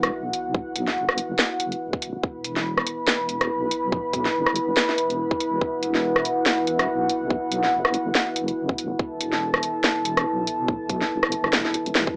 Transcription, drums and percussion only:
0.03 cross-stick medium
0.03 closed hi-hat soft
0.33 closed hi-hat medium
0.54 kick loud
0.76 closed hi-hat medium
0.88 snare soft
1.09 cross-stick medium
1.18 closed hi-hat medium
1.39 snare loud
1.60 closed hi-hat medium
1.72 closed hi-hat soft
1.93 kick loud
2.02 closed hi-hat medium
2.23 kick loud
2.44 closed hi-hat medium
2.56 snare soft
2.77 cross-stick medium
2.87 closed hi-hat medium
3.08 snare loud
3.29 closed hi-hat medium
3.41 cross-stick medium
3.41 closed hi-hat soft
3.71 closed hi-hat medium
3.92 kick loud
4.13 kick medium
4.13 closed hi-hat medium
4.26 snare soft
4.47 cross-stick medium
4.56 closed hi-hat medium
4.77 snare loud
4.89 snare soft
4.98 closed hi-hat medium
5.10 closed hi-hat soft
5.31 kick loud
5.41 closed hi-hat medium
5.61 kick loud
5.83 closed hi-hat medium
5.95 snare soft
6.16 cross-stick medium
6.25 closed hi-hat medium
6.46 snare loud
6.67 closed hi-hat medium
6.79 cross-stick medium
6.79 closed hi-hat soft
7.09 closed hi-hat medium
7.30 kick loud
7.52 closed hi-hat medium
7.64 snare soft
7.85 cross-stick medium
7.94 closed hi-hat medium
8.15 snare loud
8.36 closed hi-hat medium
8.48 closed hi-hat soft
8.69 kick loud
8.78 closed hi-hat medium
8.99 kick loud
9.21 closed hi-hat medium
9.33 snare soft
9.54 cross-stick medium
9.63 closed hi-hat medium
9.84 snare loud
10.05 closed hi-hat medium
10.17 cross-stick medium
10.17 closed hi-hat soft
10.47 closed hi-hat medium
10.68 kick loud
10.89 kick medium
10.89 closed hi-hat medium
11.02 snare soft
11.23 cross-stick medium
11.32 closed hi-hat medium
11.44 cross-stick medium
11.53 snare loud
11.65 snare soft
11.74 closed hi-hat medium
11.86 closed hi-hat soft
11.95 snare loud
12.07 kick loud

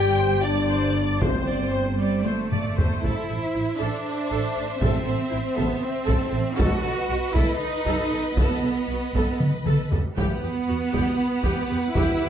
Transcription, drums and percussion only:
1.22 taiko medium
2.26 taiko high medium
2.52 taiko low-mid medium
2.78 taiko low medium
3.05 taiko medium
4.82 taiko medium
5.58 taiko medium
6.08 taiko medium
6.59 taiko medium
7.35 taiko medium
7.86 taiko medium
8.38 taiko medium
9.15 taiko medium
9.40 taiko mid medium
9.66 taiko mid medium
9.92 taiko low medium
10.18 taiko medium
10.94 taiko medium
11.44 taiko medium
11.95 taiko medium

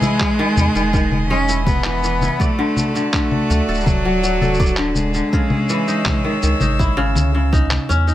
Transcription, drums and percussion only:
0.01 low conga medium
0.01 shaker soft
0.20 kick loud
0.20 clap medium
0.20 shaker soft
0.56 low conga medium
0.56 shaker medium
0.75 shaker soft
0.93 kick loud
0.93 shaker soft
1.11 low conga medium
1.49 shaker medium
1.66 kick loud
1.66 low conga medium
1.66 shaker soft
1.84 clap medium
2.03 shaker medium
2.21 low conga medium
2.21 shaker soft
2.40 kick loud
2.40 shaker soft
2.76 low conga medium
2.76 shaker medium
2.95 shaker soft
3.13 kick loud
3.13 clap medium
3.13 shaker soft
3.31 low conga medium
3.50 shaker medium
3.68 shaker soft
3.74 shaker soft
3.80 shaker soft
3.86 kick medium
3.86 low conga medium
3.86 shaker soft
4.23 shaker medium
4.41 low conga medium
4.41 shaker soft
4.54 shaker soft
4.59 kick loud
4.59 shaker soft
4.66 shaker soft
4.77 clap medium
4.95 low conga medium
4.95 shaker medium
5.14 shaker soft
5.33 kick loud
5.33 shaker soft
5.50 low conga medium
5.69 shaker medium
5.88 shaker soft
6.05 kick loud
6.05 clap medium
6.05 low conga medium
6.05 shaker soft
6.43 shaker medium
6.60 low conga medium
6.60 shaker soft
6.79 kick loud
6.79 shaker soft
7.16 low conga medium
7.16 shaker medium
7.53 kick loud
7.53 shaker soft
7.71 clap medium
7.71 low conga medium
7.90 shaker medium
8.08 shaker soft

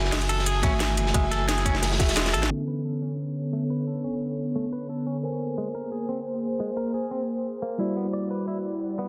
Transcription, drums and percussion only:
0.04 snare soft
0.12 snare loud
0.12 closed hi-hat medium
0.12 open hi-hat medium
0.21 closed hi-hat soft
0.21 ride soft
0.29 closed hi-hat medium
0.29 ride medium
0.39 snare soft
0.46 closed hi-hat medium
0.46 ride medium
0.63 kick loud
0.63 snare soft
0.63 closed hi-hat medium
0.63 ride medium
0.80 snare loud
0.80 closed hi-hat loud
0.80 ride medium
0.89 snare soft
0.97 closed hi-hat medium
0.97 ride medium
1.07 snare medium
1.14 kick loud
1.14 closed hi-hat medium
1.14 ride medium
1.32 snare soft
1.32 closed hi-hat medium
1.32 ride medium
1.48 snare loud
1.48 closed hi-hat medium
1.48 ride medium
1.58 snare medium
1.58 closed hi-hat soft
1.65 kick medium
1.65 closed hi-hat medium
1.65 ride medium
1.75 snare soft
1.75 ride soft
1.82 snare loud
1.82 closed hi-hat loud
1.82 open hi-hat medium
1.92 snare loud
1.92 open hi-hat medium
2.00 kick loud
2.00 snare loud
2.00 closed hi-hat medium
2.00 open hi-hat medium
2.08 snare loud
2.08 closed hi-hat soft
2.08 open hi-hat medium
2.16 snare loud
2.16 closed hi-hat loud
2.16 ride loud
2.26 snare soft
2.26 snare medium
2.26 closed hi-hat soft
2.34 closed hi-hat medium
2.34 ride medium
2.42 snare soft
2.42 snare loud

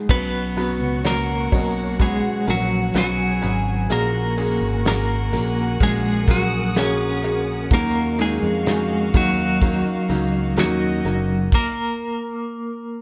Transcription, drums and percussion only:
0.09 kick medium
0.09 crash medium
0.57 hi-hat pedal medium
0.57 open hi-hat medium
1.04 snare loud
1.04 hi-hat pedal medium
1.04 open hi-hat medium
1.52 kick medium
1.52 hi-hat pedal medium
1.52 open hi-hat medium
2.00 kick medium
2.00 hi-hat pedal medium
2.00 open hi-hat medium
2.47 hi-hat pedal medium
2.47 open hi-hat medium
2.94 snare loud
2.94 hi-hat pedal medium
2.94 open hi-hat medium
3.42 hi-hat pedal medium
3.42 open hi-hat medium
3.90 hi-hat pedal medium
3.90 open hi-hat medium
4.38 hi-hat pedal medium
4.38 open hi-hat medium
4.85 snare loud
4.85 hi-hat pedal medium
4.85 open hi-hat medium
5.33 hi-hat pedal medium
5.33 open hi-hat medium
5.80 kick medium
5.80 hi-hat pedal medium
5.80 open hi-hat medium
6.28 kick medium
6.28 hi-hat pedal medium
6.28 open hi-hat medium
6.75 snare loud
6.75 hi-hat pedal medium
6.75 open hi-hat medium
7.23 hi-hat pedal medium
7.23 open hi-hat medium
7.71 kick loud
7.71 hi-hat pedal medium
7.71 open hi-hat medium
8.19 hi-hat pedal medium
8.19 open hi-hat medium
8.66 snare loud
8.66 hi-hat pedal medium
8.66 open hi-hat loud
9.14 kick medium
9.14 hi-hat pedal medium
9.14 open hi-hat medium
9.61 kick medium
9.61 hi-hat pedal medium
9.61 open hi-hat medium
10.09 hi-hat pedal medium
10.09 open hi-hat medium
10.56 snare loud
10.56 hi-hat pedal medium
10.56 open hi-hat medium
11.05 hi-hat pedal medium
11.05 open hi-hat medium
11.52 kick loud
11.52 crash medium

